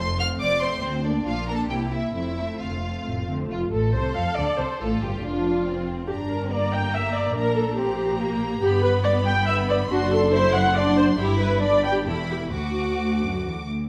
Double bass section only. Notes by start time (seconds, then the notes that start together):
Already playing: F1
0.41 F1
0.83 D2
1.26 A#1
1.69 C2
2.14 F1
2.60 F1
3.06 F1
3.50 F1
3.71 A1
3.93 C2
4.15 F2
4.37 D2
4.58 C2
4.80 A1
5.01 G1
5.23 F1
6.09 G1
7.34 A#1
8.62 G1
9.90 F#1
11.18 G1
12.07 E1
12.52 D2